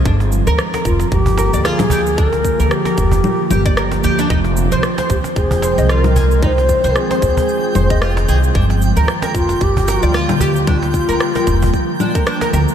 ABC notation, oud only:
X:1
M:4/4
L:1/16
Q:"Swing 16ths" 1/4=113
K:Gphr
V:1 name="Oud"
D z2 B z B4 z B d F z G z | D z2 B z B4 z G d B z G D | E z2 c z c4 z c e F z A z | E z2 c z c4 z c e F z A z |
D z2 B z B4 z B d F z G z | D z2 B z B4 z D B D B B z |]